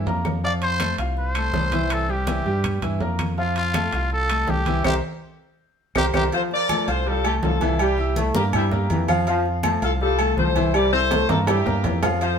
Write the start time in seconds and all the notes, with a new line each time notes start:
0.06 F2 A#3 A#4 A#5, high conga, low timbale
0.25 high conga, low timbale, claves
0.44 F3 F4 D5 F5, high conga
0.62 C5, high conga, high timbale
0.80 A3 A4 A5, high conga, high timbale, low timbale, claves
0.98 C2 F4 F5 F6, high conga, high timbale
1.17 C5, high conga
1.35 A3 A4 A5, high conga, high timbale, claves
1.53 C2, high conga, low timbale
1.72 E3 E4 E5, high conga, high timbale
1.90 A4, high timbale, claves
2.09 G3 G4 G5, high conga
2.27 E3 E4 E5, high conga, high timbale, low timbale
2.45 G2 G3 G4 G5, high conga
2.64 high conga, low conga, high timbale, claves
2.82 G2 E3 E4 E5, high conga, low conga, high timbale
3.00 F2 A#3 A#4 A#5, high conga, low timbale
3.19 high conga, high timbale, claves
3.37 F3 F4 F5, high conga
3.56 F4, high conga, high timbale
3.74 A3 A4 A5, high conga, high timbale, low timbale, claves
3.92 C2 F4 F5 F6, high conga, high timbale
4.11 A4, high conga
4.29 A3 A4 A5, high conga, high timbale, claves
4.48 C2 G4, high conga, low timbale
4.66 E3 E4 E5, high conga, high timbale
4.84 C2 G4 A#4 C5, high conga, high timbale, claves
5.95 C2 G4 A#4 C5, high conga, high timbale, claves
6.14 C2 G4 A#4 C5, high conga, high timbale, claves
6.32 F3 F4 A4 C5 F5, high conga, low agogo
6.51 A#4 D5, high conga
6.69 F3 A3 A4 A5, high conga, low agogo, claves
6.88 C2 F4 A4 C5 F5 F6, high conga, low agogo
7.06 G3 F4 A4, high conga
7.24 A3 E4 G4 A4 A5, high conga, low agogo, claves
7.43 C2 F3 F4 A4, high conga, low timbale
7.61 E3 E4 E5, high conga, low agogo
7.79 G3 E4 G4 G5, high conga, low agogo, claves
7.98 E4 E5 E6, high conga
8.16 A3, high conga, low agogo
8.35 G2 A#3 E4 G4 A#4 A#5, high conga
8.53 G3 C4 E4 E5 E6, high conga, low conga, low agogo, claves
8.71 A#3 E4 G4 A#4 A#5, high conga, low conga
8.90 F2 E3, high conga, low agogo
9.08 F3 F4 F5, high conga, low agogo, claves
9.27 F3 F4 F5, high conga, low agogo
9.45 high conga
9.63 F3 A3 A4 A5, high conga, low agogo, claves
9.82 C2 F4 A4 F5 F6, high conga, low agogo
10.01 G3 F4 A4, high conga
10.19 A3 A4 A5, high conga, low agogo, claves
10.37 C2 F3 A4 C5, high conga
10.56 E3 E4 E5, high conga, low agogo
10.74 G3 G4 A#4 D5 G5, high conga, low agogo, claves
10.92 E4 A4 C5 E5 E6, high conga
11.11 A3, high conga, high timbale, low agogo
11.29 G2 A#3 F4 A4 A#4 A#5, high conga, high timbale
11.47 G3 E4 G4 E5 E6, high conga, low timbale, low agogo, claves
11.66 G2 A#3 A#4 A#5, low conga, low timbale
11.84 F2 E3, low conga, low timbale, low agogo
12.02 F3 F4 F5, low conga, low timbale, low agogo, claves
12.21 F3 F4 A4 C5 F5, high conga, low agogo